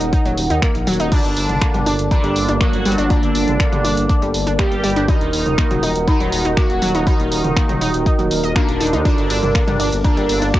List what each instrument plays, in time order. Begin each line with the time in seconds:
Already playing: analog synth pad D#4 A#4 F#5
0.01 detuned saw bass D#1, closed hi-hat
0.13 synth arpeggio sound D#4, kick, closed hi-hat
0.25 detuned saw bass D#1, synth arpeggio sound F#3, closed hi-hat
0.37 detuned saw bass D#1, open hi-hat
0.50 detuned saw bass D#2, synth arpeggio sound D#4, closed hi-hat
0.62 synth arpeggio sound A#3, finger snap, kick, closed hi-hat
0.75 detuned saw bass A#1, closed hi-hat
0.87 detuned saw bass D#1, synth arpeggio sound F#3, open hi-hat
0.93 closed hi-hat
1.00 detuned saw bass D#1, synth arpeggio sound D#4, closed hi-hat
1.12 analog polysynth D3 D4, analog synth pad A#3 D4 A#4, synth arpeggio sound D4, synth bell D4, kick, closed hi-hat, crash
1.25 detuned saw bass G1, closed hi-hat
1.37 detuned saw bass G1, open hi-hat
1.49 detuned saw bass G1, closed hi-hat, mid tom
1.61 synth arpeggio sound A#3, finger snap, kick, closed hi-hat
1.74 detuned saw bass G1, synth arpeggio sound G3, closed hi-hat, mid tom
1.86 detuned saw bass G1, synth arpeggio sound D4, open hi-hat
1.99 detuned saw bass G1, closed hi-hat
2.11 analog polysynth D3 D4, synth arpeggio sound D4, synth bell D4, kick, closed hi-hat
2.24 detuned saw bass G1, synth arpeggio sound G3, closed hi-hat
2.36 detuned saw bass G1, open hi-hat
2.48 detuned saw bass G1, synth arpeggio sound D4, closed hi-hat
2.61 analog polysynth F#3 F#4, synth arpeggio sound A#3, synth bell F#4, finger snap, kick, closed hi-hat
2.73 detuned saw bass G1, closed hi-hat
2.85 detuned saw bass G1, synth arpeggio sound G3, open hi-hat
2.92 closed hi-hat
2.98 detuned saw bass G1, synth arpeggio sound D4, closed hi-hat
3.10 analog polysynth D3 D4, synth bell D4, synth arpeggio sound D4, kick, closed hi-hat
3.23 detuned saw bass G1, closed hi-hat
3.35 detuned saw bass G1, open hi-hat
3.48 detuned saw bass G1, closed hi-hat, mid tom
3.60 synth arpeggio sound A#3, finger snap, kick, closed hi-hat
3.72 detuned saw bass G1, synth arpeggio sound G3, closed hi-hat, mid tom
3.85 detuned saw bass G1, synth arpeggio sound D4, open hi-hat
3.97 detuned saw bass G1, closed hi-hat
4.09 synth arpeggio sound D4, kick, closed hi-hat
4.22 detuned saw bass G1, synth arpeggio sound G3, closed hi-hat
4.34 detuned saw bass G1, open hi-hat
4.47 detuned saw bass G1, synth arpeggio sound D4, closed hi-hat
4.59 analog polysynth G3 G4, synth arpeggio sound A#3, synth bell G4, finger snap, kick, closed hi-hat
4.72 detuned saw bass G1, closed hi-hat
4.84 detuned saw bass G1, synth arpeggio sound G3, open hi-hat
4.90 closed hi-hat
4.96 detuned saw bass G1, synth arpeggio sound D4, closed hi-hat
5.08 analog polysynth D#3 D#4, synth arpeggio sound D#4, synth bell D#4, analog synth pad F#4 F#5, kick, closed hi-hat
5.21 detuned saw bass D#1, closed hi-hat
5.33 detuned saw bass D#1, open hi-hat
5.46 detuned saw bass D#1, closed hi-hat, mid tom
5.58 synth arpeggio sound A#3, finger snap, kick, closed hi-hat
5.71 detuned saw bass D#1, synth arpeggio sound F#3, closed hi-hat, mid tom
5.83 detuned saw bass D#1, synth arpeggio sound D#4, open hi-hat
5.96 detuned saw bass D#1, closed hi-hat
6.08 analog polysynth D#3 D#4, synth arpeggio sound D#4, synth bell D#4, kick, closed hi-hat
6.20 detuned saw bass D#1, synth arpeggio sound F#3, closed hi-hat
6.33 detuned saw bass D#1, open hi-hat
6.45 detuned saw bass D#1, synth arpeggio sound D#4, closed hi-hat
6.57 analog polysynth F#3 F#4, synth arpeggio sound A#3, synth bell F#4, finger snap, kick, closed hi-hat
6.70 detuned saw bass D#1, closed hi-hat
6.82 detuned saw bass D#1, synth arpeggio sound F#3, open hi-hat
6.88 closed hi-hat
6.95 detuned saw bass D#1, synth arpeggio sound D#4, closed hi-hat
7.07 analog polysynth D#3 D#4, synth arpeggio sound D#4, synth bell D#4, kick, closed hi-hat
7.20 detuned saw bass D#1, closed hi-hat
7.32 detuned saw bass D#1, open hi-hat
7.44 detuned saw bass D#1, closed hi-hat, mid tom
7.56 synth arpeggio sound A#3, finger snap, kick, closed hi-hat
7.69 detuned saw bass D#1, synth arpeggio sound F#3, closed hi-hat, mid tom
7.81 detuned saw bass D#1, synth arpeggio sound D#4, open hi-hat
7.94 detuned saw bass D#1, closed hi-hat
8.06 synth arpeggio sound D#4, kick, closed hi-hat
8.19 detuned saw bass D#1, synth arpeggio sound F#3, closed hi-hat
8.31 detuned saw bass D#1, open hi-hat
8.44 detuned saw bass D#1, synth arpeggio sound D#5, closed hi-hat
8.56 analog polysynth D3 D4, synth arpeggio sound A#3, synth bell D4, finger snap, kick, closed hi-hat
8.68 detuned saw bass D#1, closed hi-hat
8.80 detuned saw bass D#1, synth arpeggio sound D#4, open hi-hat
8.87 closed hi-hat
8.93 detuned saw bass D#2, synth arpeggio sound D#4, closed hi-hat
9.05 analog polysynth D3 D4, analog synth pad A#3 D4, synth arpeggio sound D4, synth bell D4, kick, closed hi-hat, ride
9.18 detuned saw bass G1, closed hi-hat
9.30 detuned saw bass G1, synth arpeggio sound D4, open hi-hat, ride
9.43 detuned saw bass G1, closed hi-hat, mid tom
9.55 synth arpeggio sound A#3, finger snap, kick, closed hi-hat, ride
9.67 detuned saw bass G1, synth arpeggio sound G3, closed hi-hat, mid tom
9.80 detuned saw bass G1, synth arpeggio sound D4, open hi-hat, ride
9.92 detuned saw bass G1, closed hi-hat
10.04 analog polysynth D3 D4, synth arpeggio sound D4, synth bell D4, kick, closed hi-hat, ride
10.17 detuned saw bass G1, synth arpeggio sound G3, closed hi-hat
10.29 detuned saw bass G1, open hi-hat, ride
10.42 detuned saw bass G1, synth arpeggio sound D4, closed hi-hat
10.54 analog polysynth F#3 F#4, synth arpeggio sound A#3, synth bell F#4, finger snap, kick, closed hi-hat, ride